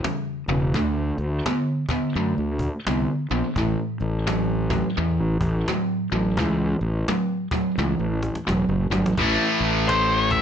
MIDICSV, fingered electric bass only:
0, 0, Header, 1, 2, 480
1, 0, Start_track
1, 0, Key_signature, 3, "major"
1, 0, Tempo, 702576
1, 504, Time_signature, 4, 2, 24, 8
1, 7117, End_track
2, 0, Start_track
2, 0, Title_t, "Fingered electric bass"
2, 0, Program_c, 0, 33
2, 328, Note_on_c, 0, 28, 79
2, 507, Note_off_c, 0, 28, 0
2, 507, Note_on_c, 0, 38, 87
2, 756, Note_off_c, 0, 38, 0
2, 807, Note_on_c, 0, 38, 91
2, 958, Note_off_c, 0, 38, 0
2, 1473, Note_on_c, 0, 42, 81
2, 1597, Note_off_c, 0, 42, 0
2, 1625, Note_on_c, 0, 38, 77
2, 1824, Note_off_c, 0, 38, 0
2, 1960, Note_on_c, 0, 36, 83
2, 2082, Note_off_c, 0, 36, 0
2, 2259, Note_on_c, 0, 34, 78
2, 2332, Note_off_c, 0, 34, 0
2, 2432, Note_on_c, 0, 33, 95
2, 2557, Note_off_c, 0, 33, 0
2, 2737, Note_on_c, 0, 33, 77
2, 3286, Note_off_c, 0, 33, 0
2, 3400, Note_on_c, 0, 40, 93
2, 3552, Note_off_c, 0, 40, 0
2, 3552, Note_on_c, 0, 33, 81
2, 3673, Note_off_c, 0, 33, 0
2, 3695, Note_on_c, 0, 33, 95
2, 3845, Note_off_c, 0, 33, 0
2, 4182, Note_on_c, 0, 33, 78
2, 4353, Note_off_c, 0, 33, 0
2, 4353, Note_on_c, 0, 37, 88
2, 4602, Note_off_c, 0, 37, 0
2, 4653, Note_on_c, 0, 33, 86
2, 4804, Note_off_c, 0, 33, 0
2, 5314, Note_on_c, 0, 37, 86
2, 5437, Note_off_c, 0, 37, 0
2, 5461, Note_on_c, 0, 33, 75
2, 5660, Note_off_c, 0, 33, 0
2, 5791, Note_on_c, 0, 28, 76
2, 5924, Note_off_c, 0, 28, 0
2, 5935, Note_on_c, 0, 30, 81
2, 6071, Note_off_c, 0, 30, 0
2, 6081, Note_on_c, 0, 31, 75
2, 6165, Note_off_c, 0, 31, 0
2, 6178, Note_on_c, 0, 33, 77
2, 6259, Note_off_c, 0, 33, 0
2, 6270, Note_on_c, 0, 33, 99
2, 6393, Note_off_c, 0, 33, 0
2, 6561, Note_on_c, 0, 33, 84
2, 7109, Note_off_c, 0, 33, 0
2, 7117, End_track
0, 0, End_of_file